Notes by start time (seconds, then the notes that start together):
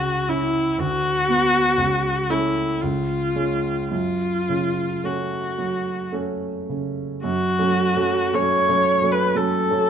Already playing: C#2 F#4
0.29 C#4 E4
0.78 D2 F#4
1.28 B3
1.78 C#2
2.30 A3 C#4 E4
2.81 C#2 F4
3.36 G#3 C#4
3.91 F#2 F4
4.49 C#3
5.04 A3 C#4 F#4
5.58 F#3
6.13 A3 C#4
6.69 C#3
7.24 F#2 F#4
7.59 F#3 A3 C#4
7.97 F#3 A3 C#4
8.33 F#3 A3 C#4 C#5
8.69 F#3 A3 C#4
9.02 F#3 A3 C#4
9.11 B4
9.35 F#3 A3 C#4 A4
9.71 F#3 A3 C#4